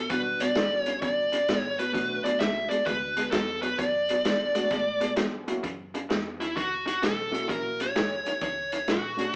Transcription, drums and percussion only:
0.10 kick loud
0.10 closed hi-hat medium
0.40 closed hi-hat medium
0.55 snare loud
0.55 closed hi-hat medium
0.86 closed hi-hat medium
1.02 kick loud
1.02 closed hi-hat medium
1.33 closed hi-hat medium
1.49 snare medium
1.49 closed hi-hat medium
1.79 closed hi-hat medium
1.95 kick loud
1.95 closed hi-hat medium
2.26 closed hi-hat medium
2.40 snare loud
2.40 closed hi-hat medium
2.71 closed hi-hat medium
2.86 kick loud
2.86 closed hi-hat medium
3.17 closed hi-hat medium
3.32 snare loud
3.32 closed hi-hat medium
3.63 closed hi-hat medium
3.79 kick loud
3.79 closed hi-hat medium
4.09 closed hi-hat medium
4.25 snare loud
4.25 closed hi-hat medium
4.55 closed hi-hat medium
4.71 kick medium
4.71 closed hi-hat medium
5.01 closed hi-hat medium
5.17 snare loud
5.17 closed hi-hat medium
5.48 closed hi-hat medium
5.64 kick loud
5.64 closed hi-hat medium
5.95 closed hi-hat medium
6.10 snare loud
6.10 closed hi-hat medium
6.41 closed hi-hat medium
6.57 kick loud
6.57 closed hi-hat medium
6.88 closed hi-hat medium
7.03 snare loud
7.03 closed hi-hat medium
7.34 closed hi-hat medium
7.49 kick loud
7.49 closed hi-hat medium
7.80 closed hi-hat medium
7.96 snare loud
7.96 closed hi-hat medium
8.26 closed hi-hat medium
8.41 kick loud
8.41 closed hi-hat medium
8.72 closed hi-hat medium
8.88 snare medium
8.88 closed hi-hat medium
9.18 closed hi-hat medium

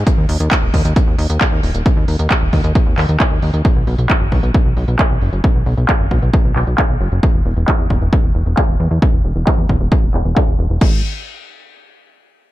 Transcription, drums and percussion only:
0.07 kick loud
0.07 closed hi-hat medium
0.29 open hi-hat loud
0.40 closed hi-hat medium
0.51 kick loud
0.51 clap loud
0.51 closed hi-hat medium
0.74 kick medium
0.74 open hi-hat loud
0.85 closed hi-hat medium
0.96 kick loud
0.96 closed hi-hat medium
1.19 open hi-hat loud
1.30 closed hi-hat medium
1.41 kick loud
1.41 clap loud
1.41 closed hi-hat medium
1.63 open hi-hat loud
1.75 closed hi-hat medium
1.86 kick loud
1.86 closed hi-hat medium
2.08 open hi-hat loud
2.19 closed hi-hat medium
2.31 kick loud
2.31 clap loud
2.31 closed hi-hat medium
2.53 kick medium
2.53 open hi-hat loud
2.64 closed hi-hat medium
2.75 kick loud
2.75 closed hi-hat medium
2.98 clap medium
2.98 open hi-hat loud
3.09 closed hi-hat medium
3.20 kick loud
3.20 clap loud
3.20 closed hi-hat medium
3.42 open hi-hat loud
3.54 closed hi-hat medium
3.65 kick loud
3.65 closed hi-hat medium
3.87 open hi-hat loud
3.98 closed hi-hat medium
4.10 kick loud
4.10 clap loud
4.10 closed hi-hat medium
4.32 kick medium
4.32 open hi-hat medium
4.43 closed hi-hat medium
4.54 kick loud
4.54 closed hi-hat medium
4.77 open hi-hat loud
4.88 closed hi-hat medium
4.99 kick loud
4.99 clap loud
4.99 closed hi-hat medium
5.22 open hi-hat medium
5.33 closed hi-hat medium
5.44 kick loud
5.44 closed hi-hat medium
5.66 open hi-hat loud
5.78 closed hi-hat medium
5.89 kick loud
5.89 clap loud
5.89 closed hi-hat medium
6.11 kick medium
6.11 open hi-hat medium
6.22 closed hi-hat medium
6.34 kick loud
6.56 clap medium
6.56 open hi-hat loud
6.67 closed hi-hat medium
6.78 kick loud
6.78 clap loud
7.01 open hi-hat medium
7.12 closed hi-hat medium
7.23 kick loud
7.45 open hi-hat loud
7.57 closed hi-hat medium
7.68 kick loud
7.68 clap loud
7.90 kick medium
7.90 open hi-hat medium
8.01 closed hi-hat medium
8.13 kick loud
8.35 open hi-hat loud
8.46 closed hi-hat medium
8.57 kick loud
8.57 clap loud
8.80 open hi-hat medium
8.91 closed hi-hat medium
9.02 kick loud
9.25 open hi-hat loud
9.36 closed hi-hat medium
9.47 kick loud
9.47 clap loud
9.69 kick medium
9.81 closed hi-hat medium
9.92 kick loud
10.14 clap medium
10.14 open hi-hat loud
10.25 closed hi-hat medium
10.37 kick loud
10.37 clap loud
10.59 open hi-hat medium
10.70 closed hi-hat medium
10.81 kick loud
10.81 crash medium

